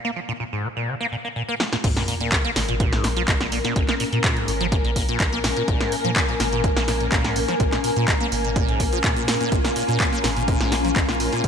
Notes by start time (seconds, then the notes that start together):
0.05 A#3
0.16 F3
0.29 A#2
0.40 A#2
0.53 G#2
0.64 B2
0.77 A#2
0.88 C#3
1.01 A#3
1.12 A#2
1.25 A#3
1.36 A#2
1.49 A#3
1.60 F3, snare
1.73 A#2, snare
1.84 A#1 A#2 A#3 C#4 A#4, kick, closed hi-hat, crash, sub drop
1.97 A#2 A#4, snare, closed hi-hat
2.08 A#2, open hi-hat
2.21 A#2, closed hi-hat
2.32 A#1, kick, clap, closed hi-hat
2.45 A#3, closed hi-hat
2.56 G#1 A#2, snare, open hi-hat
2.69 A#2, closed hi-hat
2.80 A#2, kick, closed hi-hat
2.93 A#1 G#2, snare, closed hi-hat
3.04 A#2, snare, open hi-hat
3.17 F3, closed hi-hat
3.28 A#1 A#2, kick, clap, closed hi-hat
3.39 A#2 G#5, snare, closed hi-hat
3.52 A#2, open hi-hat
3.65 A#2, snare, closed hi-hat
3.76 A#1, kick, closed hi-hat
3.89 A#3, snare, clap, closed hi-hat
4.00 A#2, open hi-hat
4.13 A#2, closed hi-hat
4.24 A#2, kick, clap, closed hi-hat
4.37 G#2, closed hi-hat
4.48 G#1 A#2, open hi-hat
4.61 F3, closed hi-hat
4.72 A#2, kick, closed hi-hat
4.85 A#1 A#2, closed hi-hat
4.96 A#2, kick, open hi-hat
5.09 A#2, closed hi-hat
5.20 A#1, kick, clap, closed hi-hat
5.33 A#3, closed hi-hat
5.44 A#2, snare, open hi-hat
5.57 A#2, closed hi-hat
5.68 A#1 A#2, kick, closed hi-hat
5.81 G#2, snare, closed hi-hat
5.92 A#2, open hi-hat
6.05 A#2 F3, closed hi-hat
6.16 A#2, kick, clap, closed hi-hat
6.29 A#2, closed hi-hat
6.40 G#1 A#2, snare, open hi-hat
6.53 A#2, closed hi-hat
6.64 A#1, kick, closed hi-hat
6.77 A#1 A#3, snare, closed hi-hat
6.88 A#2, snare, open hi-hat
7.00 A#2, closed hi-hat
7.12 A#1 A#2, kick, clap, closed hi-hat
7.24 G#2, snare, closed hi-hat
7.36 A#2, open hi-hat
7.48 F3, snare, closed hi-hat
7.60 A#1 A#2, kick, closed hi-hat
7.73 A#2, snare, clap, closed hi-hat
7.84 A#2, open hi-hat
7.97 A#2, closed hi-hat
8.08 A#1, kick, clap, closed hi-hat
8.21 A#3, closed hi-hat
8.32 G#1 A#2, open hi-hat
8.45 A#2, closed hi-hat
8.56 A#2, kick, closed hi-hat
8.69 A#1 G#2, closed hi-hat
8.80 A#2, kick, open hi-hat
8.93 F3, closed hi-hat
9.04 A#2, kick, clap, closed hi-hat
9.17 A#2, closed hi-hat
9.28 A#2, snare, open hi-hat
9.41 A#2, closed hi-hat
9.52 A#1 A#2 F4, kick, closed hi-hat
9.65 A#2, snare, closed hi-hat
9.76 A#2, open hi-hat
9.89 A#2, closed hi-hat
10.00 A#1, kick, clap, closed hi-hat
10.13 A#3, closed hi-hat
10.24 G#1 A#2, snare, open hi-hat
10.37 A#2, closed hi-hat
10.48 A#2, kick, closed hi-hat
10.61 A#1 G#2, snare, closed hi-hat
10.72 A#2, snare, open hi-hat
10.85 F3, closed hi-hat
10.96 A#1 A#2, kick, clap, closed hi-hat
11.07 A#2 A#5, snare, closed hi-hat
11.20 A#2, open hi-hat
11.33 A#2, snare, closed hi-hat
11.44 A#1, kick, closed hi-hat